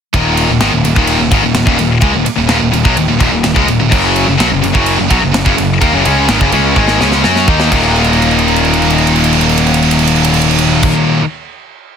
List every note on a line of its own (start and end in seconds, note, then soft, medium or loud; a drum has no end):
0.14 0.47 D#1 medium
0.14 0.49 D#2 medium
0.14 0.49 A#2 loud
0.14 0.50 D#3 medium
0.14 kick loud
0.14 ride loud
0.37 ride medium
0.49 0.60 D#1 medium
0.49 0.62 D#2 medium
0.49 0.60 A#2 medium
0.61 0.71 G#1 medium
0.61 0.72 G#2 medium
0.61 0.72 D#3 loud
0.61 snare loud
0.61 ride loud
0.72 0.82 D#1 medium
0.72 0.83 D#2 medium
0.72 0.84 A#2 medium
0.83 0.95 D#1 medium
0.83 0.94 D#2 medium
0.83 0.96 A#2 medium
0.83 ride medium
0.96 1.18 D#1 medium
0.96 1.18 D#2 medium
0.96 1.19 A#2 medium
0.96 1.20 D#3 loud
0.96 kick loud
1.07 ride loud
1.19 1.31 D#1 medium
1.19 1.32 D#2 medium
1.19 1.30 A#2 medium
1.31 1.43 G#1 medium
1.31 1.43 G#2 medium
1.31 1.43 D#3 medium
1.31 kick loud
1.31 ride medium
1.43 1.54 D#1 medium
1.43 1.53 D#2 medium
1.43 1.54 A#2 medium
1.55 1.66 D#1 medium
1.55 1.64 D#2 medium
1.55 1.65 A#2 medium
1.55 snare loud
1.55 ride loud
1.65 1.78 D#1 medium
1.65 1.77 D#2 medium
1.65 1.77 A#2 medium
1.65 kick loud
1.78 2.01 D#1 medium
1.78 1.98 D#2 medium
1.78 1.98 A#2 medium
1.78 ride medium
2.01 2.13 C#2 loud
2.01 2.13 C#3 medium
2.01 2.13 G#3 loud
2.01 kick loud
2.01 ride medium
2.13 2.25 D#1 medium
2.13 2.24 D#2 medium
2.13 2.26 A#2 medium
2.25 muted distorted electric guitar stroke medium
2.25 muted picked electric bass stroke soft
2.25 ride medium
2.36 2.49 D#1 medium
2.36 2.46 D#2 medium
2.36 2.48 A#2 medium
2.47 2.61 D#1 medium
2.47 2.58 D#2 loud
2.47 2.59 A#2 loud
2.47 snare loud
2.47 ride medium
2.59 2.72 D#1 medium
2.59 2.70 D#2 medium
2.59 2.71 A#2 medium
2.72 2.84 D#1 medium
2.72 2.85 D#2 medium
2.72 2.84 A#2 medium
2.72 ride medium
2.84 2.96 B1 medium
2.84 2.96 B2 medium
2.84 2.96 F#3 medium
2.84 kick loud
2.96 3.08 D#1 medium
2.96 3.07 D#2 medium
2.96 3.07 A#2 medium
2.96 ride loud
3.08 3.20 D#1 medium
3.08 3.17 D#2 medium
3.08 3.18 A#2 medium
3.19 3.31 D#1 medium
3.19 3.30 D#2 medium
3.19 3.31 A#2 loud
3.19 kick loud
3.19 ride medium
3.31 3.43 D#1 medium
3.31 3.42 D#2 medium
3.31 3.42 A#2 medium
3.43 3.55 D#1 medium
3.43 3.56 D#2 medium
3.43 3.54 A#2 medium
3.43 snare loud
3.43 ride medium
3.54 3.67 C#2 medium
3.54 3.67 C#3 medium
3.54 3.67 G#3 medium
3.54 kick medium
3.66 3.79 D#1 medium
3.66 3.78 D#2 medium
3.66 3.78 A#2 medium
3.66 ride medium
3.79 3.91 D#1 medium
3.79 3.89 D#2 medium
3.79 3.90 A#2 medium
3.89 4.25 F#1 medium
3.89 4.25 F#2 medium
3.89 4.26 C#3 medium
3.89 4.26 F#3 loud
3.89 kick loud
3.89 crash medium
4.16 ride medium
4.27 4.39 F#1 medium
4.27 4.39 F#2 medium
4.27 4.37 C#3 medium
4.37 4.51 B1 medium
4.37 4.49 B2 medium
4.37 4.50 F#3 loud
4.37 snare loud
4.37 ride loud
4.50 4.62 F#1 medium
4.50 4.60 F#2 medium
4.50 4.60 C#3 medium
4.61 4.74 F#1 medium
4.61 4.72 F#2 medium
4.61 4.72 C#3 medium
4.61 ride medium
4.73 4.97 F#1 medium
4.73 4.97 F#2 medium
4.73 4.97 C#3 loud
4.73 4.98 F#3 loud
4.73 kick loud
4.86 ride loud
4.98 5.10 F#1 medium
4.98 5.10 F#2 medium
4.98 5.09 C#3 medium
5.10 5.22 B1 medium
5.10 5.21 B2 medium
5.10 5.22 F#3 loud
5.10 kick loud
5.10 ride medium
5.21 5.34 F#1 medium
5.21 5.31 F#2 medium
5.21 5.32 C#3 medium
5.32 5.45 F#1 medium
5.32 5.44 F#2 medium
5.32 5.45 C#3 medium
5.32 snare loud
5.32 ride loud
5.45 5.57 F#1 medium
5.45 5.55 F#2 medium
5.45 5.55 C#3 loud
5.45 kick loud
5.56 5.80 F#1 medium
5.56 5.76 F#2 medium
5.56 5.76 C#3 medium
5.56 ride medium
5.81 5.93 D#2 medium
5.81 5.92 D#3 medium
5.81 5.93 A#3 loud
5.81 kick loud
5.81 ride medium
5.94 6.05 F#1 medium
5.94 6.05 F#2 medium
5.94 6.03 C#3 loud
6.04 6.28 C#2 loud
6.04 6.28 C#3 medium
6.04 6.28 G#3 loud
6.04 6.29 C#4 loud
6.04 ride medium
6.28 6.40 G#1 medium
6.28 6.40 G#2 medium
6.28 6.40 D#3 medium
6.28 snare loud
6.28 ride loud
6.40 6.52 F#1 loud
6.40 6.52 F#2 medium
6.40 6.52 C#3 medium
6.40 kick loud
6.52 6.75 C#2 medium
6.52 6.76 C#3 medium
6.52 6.76 G#3 medium
6.52 6.76 C#4 medium
6.52 ride medium
6.76 6.98 G#1 loud
6.76 7.00 G#2 medium
6.76 7.00 D#3 medium
6.76 7.00 G#3 loud
6.76 kick medium
6.88 snare medium
7.00 7.23 C#2 medium
7.00 7.23 C#3 medium
7.00 7.23 G#3 loud
7.00 7.23 C#4 loud
7.00 snare medium
7.12 snare medium
7.24 7.47 F#2 medium
7.24 7.47 F#3 medium
7.24 7.47 C#4 loud
7.24 7.48 F#4 loud
7.24 snare medium
7.36 snare medium
7.47 7.70 D#2 medium
7.47 7.70 D#3 medium
7.47 7.71 A#3 medium
7.47 7.71 D#4 medium
7.47 kick loud
7.60 snare medium
7.70 10.89 D#1 medium
7.70 11.20 D#2 loud
7.70 11.22 A#2 loud
7.70 11.24 D#3 loud
7.70 11.22 F#3 loud
7.70 11.23 A#3 loud
7.70 11.23 D#4 medium
7.70 kick loud
7.70 crash medium
7.96 crash soft
8.04 ride medium
8.13 crash medium
8.22 ride soft
8.31 crash soft
8.39 ride medium
8.48 crash medium
8.56 ride medium
8.65 crash medium
8.74 ride medium
8.82 crash medium
8.90 ride medium
8.98 crash medium
9.07 ride medium
9.16 crash medium
9.24 ride medium
9.33 crash medium
9.41 ride medium
9.49 crash medium
9.58 ride medium
9.67 crash medium
9.74 ride medium
9.82 crash medium
9.91 ride medium
9.99 crash medium
10.07 ride medium
10.16 crash medium
10.24 ride medium
10.34 crash medium
10.42 ride medium
10.51 crash medium
10.59 ride medium
10.83 kick loud
10.83 crash loud